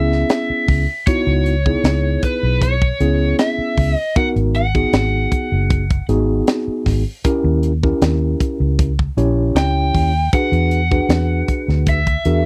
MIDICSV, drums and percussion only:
0, 0, Header, 1, 2, 480
1, 0, Start_track
1, 0, Key_signature, 5, "minor"
1, 0, Tempo, 771208
1, 665, Time_signature, 4, 2, 24, 8
1, 7752, End_track
2, 0, Start_track
2, 0, Title_t, "Drums"
2, 75, Note_on_c, 9, 38, 32
2, 137, Note_off_c, 9, 38, 0
2, 183, Note_on_c, 9, 42, 78
2, 187, Note_on_c, 9, 38, 105
2, 246, Note_off_c, 9, 42, 0
2, 249, Note_off_c, 9, 38, 0
2, 425, Note_on_c, 9, 46, 71
2, 426, Note_on_c, 9, 36, 77
2, 488, Note_off_c, 9, 36, 0
2, 488, Note_off_c, 9, 46, 0
2, 664, Note_on_c, 9, 42, 87
2, 665, Note_on_c, 9, 36, 108
2, 726, Note_off_c, 9, 42, 0
2, 728, Note_off_c, 9, 36, 0
2, 908, Note_on_c, 9, 42, 58
2, 970, Note_off_c, 9, 42, 0
2, 1032, Note_on_c, 9, 36, 80
2, 1094, Note_off_c, 9, 36, 0
2, 1148, Note_on_c, 9, 42, 86
2, 1151, Note_on_c, 9, 38, 104
2, 1210, Note_off_c, 9, 42, 0
2, 1214, Note_off_c, 9, 38, 0
2, 1385, Note_on_c, 9, 42, 66
2, 1387, Note_on_c, 9, 36, 71
2, 1447, Note_off_c, 9, 42, 0
2, 1449, Note_off_c, 9, 36, 0
2, 1628, Note_on_c, 9, 36, 82
2, 1628, Note_on_c, 9, 42, 83
2, 1690, Note_off_c, 9, 36, 0
2, 1690, Note_off_c, 9, 42, 0
2, 1753, Note_on_c, 9, 36, 86
2, 1815, Note_off_c, 9, 36, 0
2, 1870, Note_on_c, 9, 42, 58
2, 1932, Note_off_c, 9, 42, 0
2, 2108, Note_on_c, 9, 42, 81
2, 2112, Note_on_c, 9, 38, 97
2, 2170, Note_off_c, 9, 42, 0
2, 2174, Note_off_c, 9, 38, 0
2, 2350, Note_on_c, 9, 36, 76
2, 2350, Note_on_c, 9, 46, 74
2, 2412, Note_off_c, 9, 36, 0
2, 2412, Note_off_c, 9, 46, 0
2, 2590, Note_on_c, 9, 36, 105
2, 2590, Note_on_c, 9, 42, 78
2, 2652, Note_off_c, 9, 36, 0
2, 2652, Note_off_c, 9, 42, 0
2, 2716, Note_on_c, 9, 42, 37
2, 2778, Note_off_c, 9, 42, 0
2, 2829, Note_on_c, 9, 42, 55
2, 2892, Note_off_c, 9, 42, 0
2, 2954, Note_on_c, 9, 42, 37
2, 2955, Note_on_c, 9, 36, 73
2, 3016, Note_off_c, 9, 42, 0
2, 3018, Note_off_c, 9, 36, 0
2, 3069, Note_on_c, 9, 42, 79
2, 3073, Note_on_c, 9, 38, 107
2, 3131, Note_off_c, 9, 42, 0
2, 3135, Note_off_c, 9, 38, 0
2, 3309, Note_on_c, 9, 36, 75
2, 3309, Note_on_c, 9, 42, 55
2, 3372, Note_off_c, 9, 36, 0
2, 3372, Note_off_c, 9, 42, 0
2, 3550, Note_on_c, 9, 36, 88
2, 3550, Note_on_c, 9, 42, 76
2, 3612, Note_off_c, 9, 36, 0
2, 3612, Note_off_c, 9, 42, 0
2, 3674, Note_on_c, 9, 42, 38
2, 3675, Note_on_c, 9, 36, 86
2, 3736, Note_off_c, 9, 42, 0
2, 3738, Note_off_c, 9, 36, 0
2, 3790, Note_on_c, 9, 42, 54
2, 3852, Note_off_c, 9, 42, 0
2, 4029, Note_on_c, 9, 42, 76
2, 4033, Note_on_c, 9, 38, 110
2, 4091, Note_off_c, 9, 42, 0
2, 4095, Note_off_c, 9, 38, 0
2, 4269, Note_on_c, 9, 46, 75
2, 4270, Note_on_c, 9, 36, 72
2, 4273, Note_on_c, 9, 38, 33
2, 4332, Note_off_c, 9, 46, 0
2, 4333, Note_off_c, 9, 36, 0
2, 4335, Note_off_c, 9, 38, 0
2, 4508, Note_on_c, 9, 42, 89
2, 4511, Note_on_c, 9, 36, 98
2, 4571, Note_off_c, 9, 42, 0
2, 4573, Note_off_c, 9, 36, 0
2, 4749, Note_on_c, 9, 42, 58
2, 4811, Note_off_c, 9, 42, 0
2, 4876, Note_on_c, 9, 36, 81
2, 4938, Note_off_c, 9, 36, 0
2, 4990, Note_on_c, 9, 42, 90
2, 4993, Note_on_c, 9, 38, 103
2, 5052, Note_off_c, 9, 42, 0
2, 5056, Note_off_c, 9, 38, 0
2, 5231, Note_on_c, 9, 36, 77
2, 5232, Note_on_c, 9, 42, 65
2, 5293, Note_off_c, 9, 36, 0
2, 5294, Note_off_c, 9, 42, 0
2, 5471, Note_on_c, 9, 36, 91
2, 5471, Note_on_c, 9, 42, 88
2, 5533, Note_off_c, 9, 36, 0
2, 5533, Note_off_c, 9, 42, 0
2, 5596, Note_on_c, 9, 36, 83
2, 5658, Note_off_c, 9, 36, 0
2, 5713, Note_on_c, 9, 42, 61
2, 5775, Note_off_c, 9, 42, 0
2, 5950, Note_on_c, 9, 42, 78
2, 5954, Note_on_c, 9, 38, 112
2, 6012, Note_off_c, 9, 42, 0
2, 6016, Note_off_c, 9, 38, 0
2, 6190, Note_on_c, 9, 36, 71
2, 6190, Note_on_c, 9, 46, 73
2, 6252, Note_off_c, 9, 36, 0
2, 6252, Note_off_c, 9, 46, 0
2, 6429, Note_on_c, 9, 36, 98
2, 6429, Note_on_c, 9, 42, 80
2, 6491, Note_off_c, 9, 42, 0
2, 6492, Note_off_c, 9, 36, 0
2, 6554, Note_on_c, 9, 42, 36
2, 6616, Note_off_c, 9, 42, 0
2, 6667, Note_on_c, 9, 42, 57
2, 6729, Note_off_c, 9, 42, 0
2, 6791, Note_on_c, 9, 42, 32
2, 6793, Note_on_c, 9, 36, 86
2, 6854, Note_off_c, 9, 42, 0
2, 6856, Note_off_c, 9, 36, 0
2, 6906, Note_on_c, 9, 42, 72
2, 6909, Note_on_c, 9, 38, 107
2, 6968, Note_off_c, 9, 42, 0
2, 6972, Note_off_c, 9, 38, 0
2, 7146, Note_on_c, 9, 42, 55
2, 7148, Note_on_c, 9, 36, 74
2, 7208, Note_off_c, 9, 42, 0
2, 7210, Note_off_c, 9, 36, 0
2, 7276, Note_on_c, 9, 38, 33
2, 7339, Note_off_c, 9, 38, 0
2, 7384, Note_on_c, 9, 42, 72
2, 7386, Note_on_c, 9, 36, 83
2, 7446, Note_off_c, 9, 42, 0
2, 7449, Note_off_c, 9, 36, 0
2, 7509, Note_on_c, 9, 42, 36
2, 7511, Note_on_c, 9, 36, 78
2, 7571, Note_off_c, 9, 42, 0
2, 7574, Note_off_c, 9, 36, 0
2, 7624, Note_on_c, 9, 42, 56
2, 7686, Note_off_c, 9, 42, 0
2, 7752, End_track
0, 0, End_of_file